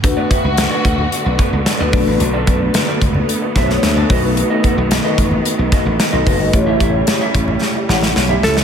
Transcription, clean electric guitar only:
\new Staff \with { instrumentName = "Clean electric guitar" } { \time 4/4 \key b \minor \tempo 4 = 111 r16 <b fis' b' d''>16 <b fis' b' e''>16 r8 <b fis' b' d''>16 r4 <b fis' b' d''>16 r8 <b fis' b' d''>16 <d' fis' a' d''>16 r16 | r16 <d' fis' a' d''>16 <d' fis' a' d''>16 r8 <d' fis' a' d''>16 r4 <d' fis' a' e''>16 r8 <d' fis' a' d''>16 <b fis' a' dis''>16 r16 | r16 <b fis' a' dis''>16 <b fis' a' fis''>16 r8 <b fis' a' dis''>16 r4 <b fis' a' dis''>16 r8 <b fis' a' dis''>16 <b fis' a' dis''>16 r16 | r16 <e' g' cis'' e''>16 <e' g' cis'' e''>16 r8 <e' g' cis'' e''>16 r4 <e' g' cis'' fis''>16 r8 <e' g' cis'' e''>16 <e' g' cis'' e''>16 r16 | }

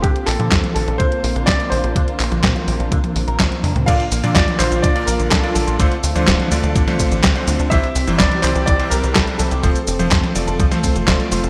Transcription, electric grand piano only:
\new Staff \with { instrumentName = "Electric grand piano" } { \time 4/4 \key bes \lydian \tempo 4 = 125 r1 | r1 | <bes, bes d' f' d''>16 r8 <bes, bes d' f' d''>8. <bes, bes d' f' f''>8. <bes, bes d' f' d''>4 <bes, bes d' f' d''>8. | <d a d' f' c''>16 r8 <d a d' f' c''>8. <d a d' f' d''>8. <d a d' f' c''>4 <d a d' f' c''>8. |
<c g c' e' c''>16 r8 <c g c' e' c''>8. <c g c' e' d''>8. <c g c' e' c''>4 <c g c' e' c''>8. | <a c' f' c''>16 r8 <a c' f' c''>8. <a c' f' d''>8. <a c' f' c''>8. <a c' f' d''>8 <a c' f' c''>8 | }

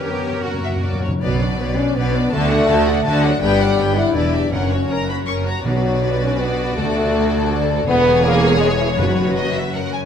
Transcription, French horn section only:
\new Staff \with { instrumentName = "French horn section" } { \time 3/4 \key b \minor \tempo 4 = 161 b4 ais4. r8 | fis4. cis'8 b4 | a2~ a8 fis8 | g4. e'8 d'4 |
cis'2~ cis'8 r8 | fis4. cis'8 b4 | a2~ a8 r8 | \key fis \mixolydian b4 ais4 gis8 e8 |
fis2 r4 | }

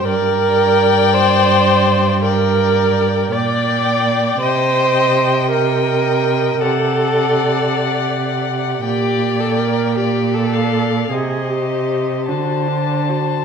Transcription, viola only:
\new Staff \with { instrumentName = "Viola" } { \time 12/8 \key g \minor \tempo 4. = 54 bes'4. c''4. bes'4. d''4. | c''4. bes'4. a'2~ a'8 r8 | g'8. a'16 bes'8 g'8 a'4 aes'8 g'4 fis'8 d'8 fis'8 | }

